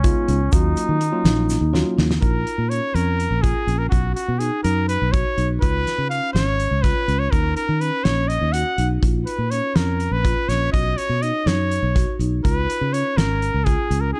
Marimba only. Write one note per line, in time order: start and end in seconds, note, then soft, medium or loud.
0.04 0.21 F4 medium
0.28 0.45 C#4 medium
0.52 0.86 F#4 medium
1.00 1.17 D#4 medium
1.25 1.59 D#4 medium
1.73 1.90 F#4 medium
1.98 2.15 D#4 medium
2.22 2.56 F4 medium
2.70 2.87 C#4 medium
2.94 3.28 C#4 medium
3.43 3.60 F4 medium
3.67 3.84 C#4 medium
3.91 4.25 F#4 medium
4.40 4.57 D#4 medium
4.64 4.98 D#4 medium
5.13 5.30 F#4 medium
5.37 5.54 D#4 medium
5.61 5.95 F4 medium
6.10 6.27 C#4 medium
6.34 6.68 C#4 medium
6.84 7.00 F4 medium
7.08 7.25 C#4 medium
7.32 7.66 D#4 medium
7.81 7.98 C#4 medium
8.05 8.39 C#4 medium
8.54 8.71 F#4 medium
8.78 8.95 D#4 medium
9.03 9.37 F4 medium
9.52 9.69 C#4 medium
9.76 10.10 C#4 medium
10.24 10.41 F4 medium
10.49 10.66 C#4 medium
10.73 11.07 F#4 medium
11.22 11.39 D#4 medium
11.46 11.80 D#4 medium
11.95 12.12 F#4 medium
12.20 12.37 D#4 medium
12.44 12.78 F4 medium
12.93 13.10 C#4 medium
13.17 13.51 C#4 medium
13.66 13.83 F4 medium
13.91 14.08 C#4 medium
14.16 14.20 D#4 medium